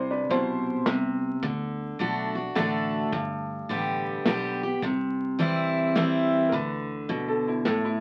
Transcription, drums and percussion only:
0.30 closed hi-hat medium
0.86 snare medium
0.86 closed hi-hat medium
1.43 kick loud
1.43 closed hi-hat medium
1.99 closed hi-hat medium
2.56 snare medium
2.56 closed hi-hat medium
3.12 kick loud
3.12 closed hi-hat medium
3.69 closed hi-hat medium
4.25 snare medium
4.25 closed hi-hat medium
4.82 kick loud
4.82 closed hi-hat medium
5.39 closed hi-hat medium
5.96 snare medium
5.96 closed hi-hat medium
6.52 kick loud
6.52 closed hi-hat medium
7.09 closed hi-hat medium
7.65 snare medium
7.65 closed hi-hat medium

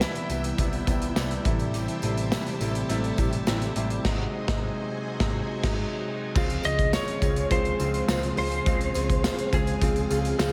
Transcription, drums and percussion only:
0.01 snare loud
0.01 tambourine medium
0.15 closed hi-hat medium
0.30 closed hi-hat medium
0.30 tambourine medium
0.44 closed hi-hat medium
0.58 kick medium
0.58 closed hi-hat medium
0.58 tambourine soft
0.73 closed hi-hat soft
0.87 kick loud
0.87 closed hi-hat medium
0.87 tambourine medium
1.02 closed hi-hat medium
1.16 snare loud
1.16 tambourine medium
1.31 closed hi-hat medium
1.45 kick loud
1.45 closed hi-hat medium
1.59 closed hi-hat soft
1.74 closed hi-hat medium
1.74 tambourine soft
1.88 closed hi-hat soft
2.02 closed hi-hat medium
2.02 tambourine soft
2.17 closed hi-hat medium
2.32 snare loud
2.32 tambourine medium
2.46 closed hi-hat medium
2.61 closed hi-hat medium
2.61 tambourine medium
2.75 closed hi-hat medium
2.90 closed hi-hat medium
3.04 closed hi-hat soft
3.18 kick medium
3.18 closed hi-hat medium
3.18 tambourine soft
3.33 closed hi-hat medium
3.47 snare loud
3.47 tambourine medium
3.62 closed hi-hat medium
3.76 closed hi-hat medium
3.90 closed hi-hat soft
4.05 kick loud
4.05 snare loud
4.05 crash medium
4.48 kick loud
4.48 snare loud
5.20 kick loud
5.20 snare loud
5.63 kick loud
5.63 snare loud
5.63 crash medium
6.36 kick loud
6.36 crash medium
6.36 tambourine soft
6.50 closed hi-hat medium
6.63 closed hi-hat medium
6.63 tambourine medium
6.79 kick medium
6.79 closed hi-hat medium
6.93 snare loud
6.93 tambourine medium
7.08 closed hi-hat medium
7.22 kick medium
7.22 closed hi-hat medium
7.22 tambourine medium
7.36 closed hi-hat medium
7.50 kick loud
7.50 closed hi-hat loud
7.50 tambourine soft
7.65 closed hi-hat soft
7.79 closed hi-hat medium
7.79 tambourine medium
7.94 closed hi-hat medium
8.09 snare loud
8.09 tambourine medium
8.23 closed hi-hat medium
8.37 open hi-hat medium
8.37 tambourine soft
8.52 closed hi-hat soft
8.66 kick loud
8.66 closed hi-hat medium
8.66 tambourine medium
8.81 closed hi-hat medium
8.94 closed hi-hat medium
8.94 tambourine medium
9.10 kick medium
9.10 closed hi-hat medium
9.24 snare loud
9.24 tambourine medium
9.39 closed hi-hat medium
9.53 kick loud
9.53 closed hi-hat medium
9.53 tambourine medium
9.67 closed hi-hat medium
9.81 kick loud
9.81 closed hi-hat loud
9.81 tambourine soft
9.96 closed hi-hat soft
10.10 closed hi-hat medium
10.10 tambourine medium
10.25 closed hi-hat medium
10.39 snare loud
10.39 tambourine medium

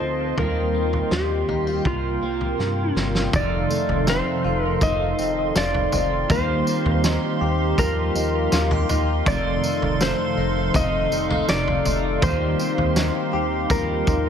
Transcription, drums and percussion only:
0.38 floor tom loud
0.93 floor tom medium
1.11 snare loud
1.49 floor tom medium
1.85 kick medium
1.85 floor tom medium
2.41 floor tom medium
2.59 snare soft
2.96 snare medium
3.15 snare medium
3.33 kick loud
3.33 floor tom loud
3.33 tambourine medium
3.71 tambourine medium
3.89 floor tom medium
4.07 snare loud
4.07 tambourine medium
4.81 kick medium
4.81 floor tom medium
4.81 tambourine medium
5.19 tambourine medium
5.56 snare loud
5.56 tambourine medium
5.75 floor tom medium
5.92 floor tom medium
5.92 tambourine medium
6.30 kick medium
6.30 floor tom loud
6.30 tambourine medium
6.67 tambourine medium
6.86 floor tom medium
7.04 snare loud
7.04 tambourine medium
7.78 kick medium
7.78 floor tom medium
7.78 tambourine medium
8.15 tambourine medium
8.52 snare loud
8.52 tambourine medium
8.71 floor tom medium
8.89 floor tom medium
8.89 tambourine medium
9.26 kick loud
9.26 floor tom loud
9.26 tambourine medium
9.64 tambourine medium
9.82 floor tom medium
10.01 snare loud
10.01 tambourine medium
10.74 kick medium
10.74 floor tom medium
10.74 tambourine medium
11.12 tambourine medium
11.30 floor tom medium
11.49 snare loud
11.49 tambourine medium
11.68 floor tom medium
11.85 floor tom medium
11.85 tambourine medium
12.22 kick medium
12.22 floor tom loud
12.22 tambourine medium
12.59 tambourine medium
12.78 floor tom medium
12.96 snare loud
12.96 tambourine medium
13.70 kick medium
13.70 floor tom medium
13.70 tambourine medium
14.07 kick medium
14.07 tambourine medium

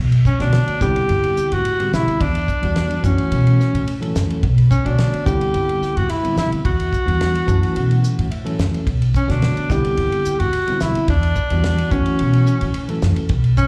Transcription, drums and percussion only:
0.12 ride medium
0.25 kick medium
0.25 hi-hat pedal medium
0.40 snare soft
0.40 ride medium
0.53 snare medium
0.53 ride medium
0.68 ride medium
0.81 kick medium
0.81 snare soft
0.81 hi-hat pedal medium
0.96 ride medium
1.09 ride medium
1.24 ride medium
1.37 hi-hat pedal medium
1.52 ride medium
1.65 ride medium
1.80 ride medium
1.93 snare medium
1.93 hi-hat pedal medium
2.08 ride soft
2.21 kick medium
2.21 ride medium
2.35 ride medium
2.48 kick medium
2.48 hi-hat pedal medium
2.63 ride medium
2.76 snare medium
2.76 ride medium
2.91 ride soft
3.04 kick medium
3.04 hi-hat pedal medium
3.18 ride soft
3.32 ride medium
3.47 ride soft
3.60 snare soft
3.60 hi-hat pedal medium
3.75 ride medium
3.88 ride medium
4.02 ride soft
4.15 snare medium
4.15 hi-hat pedal medium
4.30 ride soft
4.43 kick medium
4.43 ride medium
4.58 ride medium
4.71 kick medium
4.71 hi-hat pedal medium
4.86 ride medium
4.98 snare medium
4.98 ride medium
5.14 ride soft
5.26 kick medium
5.26 hi-hat pedal medium
5.41 ride medium
5.54 ride medium
5.69 ride medium
5.83 snare soft
5.83 hi-hat pedal medium
5.97 ride medium
6.09 ride medium
6.25 ride medium
6.37 snare medium
6.37 hi-hat pedal medium
6.52 ride medium
6.65 kick medium
6.65 ride medium
6.80 ride medium
6.93 kick medium
6.93 hi-hat pedal medium
7.08 ride medium
7.21 snare medium
7.21 ride medium
7.35 ride medium
7.48 kick medium
7.48 hi-hat pedal medium
7.63 ride medium
7.76 ride medium
7.91 ride medium
8.04 hi-hat pedal medium
8.19 ride medium
8.32 ride medium
8.46 ride soft
8.59 snare medium
8.59 hi-hat pedal medium
8.74 ride medium
8.87 kick medium
8.87 ride medium
9.02 ride medium
9.14 kick medium
9.14 hi-hat pedal medium
9.30 snare soft
9.30 ride soft
9.42 snare medium
9.42 ride medium
9.57 ride soft
9.70 kick medium
9.70 snare soft
9.70 hi-hat pedal medium
9.85 ride medium
9.97 ride medium
10.12 ride medium
10.25 hi-hat pedal medium
10.40 ride medium
10.53 ride medium
10.68 ride medium
10.80 snare medium
10.80 hi-hat pedal medium
10.95 ride medium
11.08 kick medium
11.08 ride medium
11.23 ride medium
11.35 kick medium
11.35 hi-hat pedal medium
11.50 ride medium
11.64 snare medium
11.64 ride medium
11.78 ride medium
11.91 kick medium
11.91 hi-hat pedal medium
12.06 ride medium
12.19 ride medium
12.33 ride medium
12.46 hi-hat pedal medium
12.61 ride medium
12.74 ride medium
12.89 ride medium
13.02 snare loud
13.02 hi-hat pedal medium
13.16 ride medium
13.29 kick loud
13.29 ride medium
13.44 ride soft
13.57 kick medium
13.57 hi-hat pedal medium

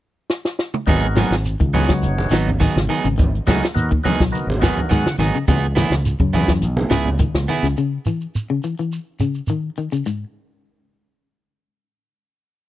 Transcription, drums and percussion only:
0.30 snare medium
0.45 snare medium
0.59 snare medium
0.74 mid tom medium
0.87 kick medium
0.87 closed hi-hat medium
0.87 low conga medium
0.87 shekere medium
1.16 snare medium
1.16 closed hi-hat soft
1.16 high conga medium
1.16 shekere medium
1.31 snare medium
1.31 closed hi-hat soft
1.31 shekere soft
1.45 closed hi-hat medium
1.45 shekere medium
1.61 kick medium
1.61 closed hi-hat soft
1.74 open hi-hat medium
1.74 high conga medium
1.74 low conga medium
1.74 shekere medium
1.89 kick medium
1.89 snare medium
1.89 closed hi-hat soft
1.89 shekere soft
2.02 closed hi-hat medium
2.02 high conga medium
2.02 shekere medium
2.18 closed hi-hat soft
2.18 high conga medium
2.30 snare medium
2.30 closed hi-hat soft
2.30 shekere medium
2.47 low conga medium
2.47 shekere soft
2.60 kick medium
2.60 closed hi-hat medium
2.60 shekere medium
2.77 snare medium
2.77 high conga medium
2.89 closed hi-hat soft
2.89 shekere soft
3.04 closed hi-hat soft
3.04 shekere medium
3.19 kick medium
3.19 closed hi-hat medium
3.19 low conga medium
3.19 shekere medium
3.35 closed hi-hat soft
3.47 kick medium
3.47 snare medium
3.47 closed hi-hat soft
3.47 high conga medium
3.47 shekere medium
3.62 snare medium
3.62 shekere soft
3.76 closed hi-hat medium
3.76 shekere medium
3.92 kick medium
4.05 open hi-hat medium
4.05 high conga medium
4.05 low conga medium
4.05 shekere medium
4.21 kick medium
4.21 snare medium
4.21 closed hi-hat soft
4.21 shekere soft
4.34 closed hi-hat medium
4.34 high conga medium
4.34 shekere medium
4.49 closed hi-hat soft
4.49 high conga medium
4.62 kick medium
4.62 snare medium
4.62 closed hi-hat soft
4.62 shekere medium
4.77 closed hi-hat soft
4.77 low conga medium
4.77 shekere soft
4.91 kick medium
4.91 closed hi-hat medium
4.91 shekere medium
5.06 snare medium
5.06 closed hi-hat soft
5.06 high conga medium
5.20 closed hi-hat soft
5.20 high conga medium
5.20 shekere soft
5.34 closed hi-hat soft
5.34 shekere medium
5.48 kick medium
5.48 closed hi-hat medium
5.48 low conga medium
5.48 shekere medium
5.77 snare medium
5.77 closed hi-hat soft
5.77 high conga loud
5.77 shekere medium
5.92 snare medium
5.92 closed hi-hat soft
5.92 high conga medium
5.92 shekere soft
6.05 closed hi-hat medium
6.05 shekere medium
6.19 kick medium
6.19 closed hi-hat soft
6.33 open hi-hat medium
6.33 high conga medium
6.33 low conga medium
6.33 shekere medium
6.48 kick medium
6.48 snare medium
6.48 closed hi-hat soft
6.48 shekere soft
6.62 closed hi-hat medium
6.62 shekere medium
6.77 closed hi-hat soft
6.77 high conga loud
6.90 snare medium
6.90 closed hi-hat soft
6.90 shekere medium
7.05 low conga medium
7.05 shekere soft
7.19 kick medium
7.19 closed hi-hat medium
7.19 shekere medium
7.35 snare medium
7.35 high conga medium
7.48 closed hi-hat medium
7.48 high conga medium
7.48 shekere soft
7.63 snare soft
7.63 closed hi-hat soft
7.63 shekere medium
7.77 shekere medium
8.06 shekere medium
8.21 shekere soft
8.35 shekere medium
8.63 shekere medium
8.78 shekere soft
8.92 shekere medium
9.20 shekere medium
9.34 shekere soft
9.47 shekere medium
9.77 shekere soft
9.92 shekere medium
10.06 shekere medium

